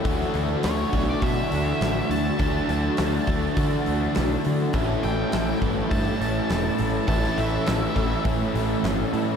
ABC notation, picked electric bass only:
X:1
M:4/4
L:1/8
Q:1/4=102
K:A
V:1 name="Picked electric bass" clef=bass
D,, D,, D,, B,,, B,, D,, A,,, D,, | D,, D,, D,, D,, D, D,, B,,, D, | A,,, A,,, A,,, =G,,, =G,, A,,, E,,, A,,, | A,,, A,,, A,,, A,,, A,, A,,, =G,,, A,, |]